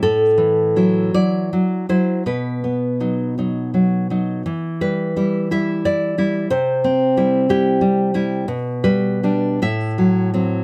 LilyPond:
\new Staff \with { instrumentName = "Nylon-string guitar" } { \time 6/8 \key e \minor \tempo 4. = 56 << { a'4. d''4 c''8 | b'4. r4. | r8 b'4 e''8 d''4 | c''4. g'4. |
r8 b'4 e''4. | } \\ { a,8 e8 <fis e'>8 <fis e'>8 fis8 <fis e'>8 | b,8 b8 <fis dis'>8 <fis dis'>8 fis8 <fis dis'>8 | e8 g8 <g e'>8 <g e'>8 e'8 <g e'>8 | c8 c'8 <g e'>8 <g e'>8 g8 <g e'>8 |
b,8 g8 <g d'>8 a,8 fis8 <fis c'>8 | } >> }